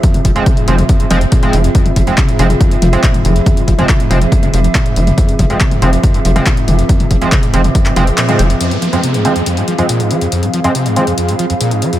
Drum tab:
HH |xxoxxxoxxxoxxxox|xxoxxxoxxxoxxxox|xxoxxxoxxxoxxxox|xxoxxxoxxxoxxxox|
CP |----------------|----x-------x---|----x-------x---|----x-------x---|
T2 |-o--o--o--o--o--|-o--o--o--o--o--|o--o--o--o--o--o|--o--o--o--o--o-|
BD |o-o-o---o---o---|o-o-o---o---o---|o-o-o---o---o---|o-o-o---o---o---|

HH |xooxxxoxxxoxxxox|xxxxxxxxxxxxxxxx|xxxxxxxxxxxxxxxx|
CP |----x----x--x---|----------------|----------------|
T2 |-o--o--o--o--o--|----------------|----------------|
BD |o-o-o---o-------|----------------|----------------|